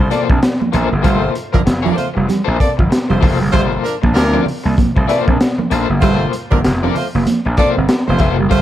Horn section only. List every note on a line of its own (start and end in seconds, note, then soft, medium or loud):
0.10 0.22 A#3 medium
0.10 0.22 A4 medium
0.10 0.22 D5 medium
1.04 1.29 A3 loud
1.04 1.29 F4 loud
1.04 1.29 C5 loud
1.53 1.61 F3 medium
1.53 1.61 D4 medium
1.53 1.61 A#4 loud
1.84 1.95 F3 medium
1.84 1.95 D4 medium
1.84 1.94 A#4 medium
1.96 2.08 A3 medium
1.96 2.08 F4 medium
1.96 2.08 C5 medium
2.59 2.71 A#3 medium
2.59 2.71 A4 medium
2.59 2.71 D5 loud
3.09 3.34 A3 medium
3.09 3.34 F4 medium
3.09 3.34 C5 loud
3.52 3.64 A3 loud
3.52 3.63 F4 loud
3.52 3.63 C5 loud
3.83 3.95 F3 medium
3.83 3.95 D4 medium
3.83 3.95 A#4 medium
4.13 4.39 F3 loud
4.13 4.39 D4 loud
4.13 4.39 A#4 loud
4.94 5.05 A3 medium
4.94 5.05 F4 medium
4.94 5.05 C5 medium
5.07 5.19 A#3 medium
5.07 5.20 A4 medium
5.07 5.19 D5 medium
6.01 6.26 A3 loud
6.01 6.26 F4 loud
6.01 6.27 C5 loud
6.51 6.59 F3 loud
6.51 6.59 D4 medium
6.51 6.59 A#4 medium
6.82 6.93 F3 medium
6.82 6.93 D4 medium
6.82 6.93 A#4 medium
6.95 7.07 A3 medium
6.95 7.06 F4 medium
6.95 7.07 C5 medium
7.57 7.69 A#3 medium
7.57 7.69 A4 medium
7.57 7.69 D5 loud
8.07 8.33 A3 loud
8.07 8.32 F4 loud
8.07 8.32 C5 loud
8.50 8.62 A3 loud
8.50 8.61 F4 loud
8.50 8.62 C5 loud